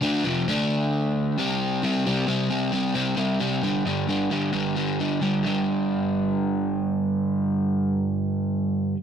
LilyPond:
\new Staff \with { instrumentName = "Overdriven electric guitar" } { \clef bass \time 4/4 \key c \major \tempo 4 = 132 <d a d'>8 <f, c f>8 <d a d'>2 <c g c'>4 | <c g c'>8 <c g c'>8 <c g c'>8 <c g c'>8 <c g c'>8 <c g c'>8 <c g c'>8 <c g c'>8 | <g, d g>8 <g, d g>8 <g, d g>8 <g, d g>8 <g, d g>8 <g, d g>8 <g, d g>8 <g, d g>8 | <g, d g>1~ |
<g, d g>1 | }